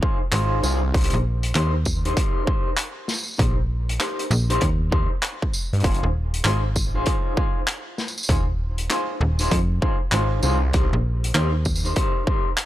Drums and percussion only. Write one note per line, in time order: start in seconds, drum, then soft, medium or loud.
0.03 kick loud
0.32 clap loud
0.32 closed hi-hat loud
0.63 tambourine medium
0.94 kick loud
0.94 closed hi-hat soft
0.97 closed hi-hat medium
1.01 closed hi-hat medium
1.04 closed hi-hat medium
1.10 closed hi-hat medium
1.43 closed hi-hat medium
1.55 clap loud
1.55 closed hi-hat loud
1.85 kick medium
1.85 tambourine medium
2.05 closed hi-hat medium
2.17 kick loud
2.17 closed hi-hat medium
2.47 kick loud
2.77 clap loud
2.77 closed hi-hat loud
3.08 snare medium
3.08 tambourine medium
3.14 tambourine soft
3.18 tambourine soft
3.23 tambourine soft
3.28 tambourine soft
3.31 tambourine soft
3.34 tambourine soft
3.37 kick loud
3.37 closed hi-hat medium
3.37 tambourine soft
3.89 closed hi-hat medium
4.00 clap loud
4.00 snare soft
4.00 closed hi-hat medium
4.19 closed hi-hat medium
4.31 tambourine medium
4.50 closed hi-hat medium
4.61 kick loud
4.61 closed hi-hat medium
4.92 kick loud
5.23 clap loud
5.23 closed hi-hat medium
5.42 kick medium
5.53 tambourine medium
5.73 closed hi-hat soft
5.80 closed hi-hat soft
5.84 kick loud
5.84 closed hi-hat medium
5.91 closed hi-hat soft
5.94 closed hi-hat soft
6.34 closed hi-hat medium
6.45 clap loud
6.45 closed hi-hat medium
6.76 kick medium
6.76 tambourine medium
7.06 kick loud
7.06 closed hi-hat medium
7.37 kick loud
7.67 clap loud
7.67 closed hi-hat medium
7.98 snare medium
7.98 tambourine soft
8.08 tambourine soft
8.18 tambourine soft
8.23 tambourine medium
8.29 kick loud
8.29 closed hi-hat medium
8.78 closed hi-hat medium
8.90 clap loud
8.90 snare soft
8.90 closed hi-hat medium
9.39 closed hi-hat medium
9.39 tambourine medium
9.51 kick loud
9.51 closed hi-hat medium
9.82 kick loud
10.12 clap loud
10.12 closed hi-hat medium
10.43 tambourine medium
10.73 kick loud
10.73 closed hi-hat medium
11.24 closed hi-hat medium
11.34 clap loud
11.34 closed hi-hat medium
11.65 kick medium
11.65 tambourine medium
11.76 tambourine medium
11.85 tambourine soft
11.96 kick loud
11.96 closed hi-hat medium
12.27 kick loud
12.57 clap loud
12.57 closed hi-hat medium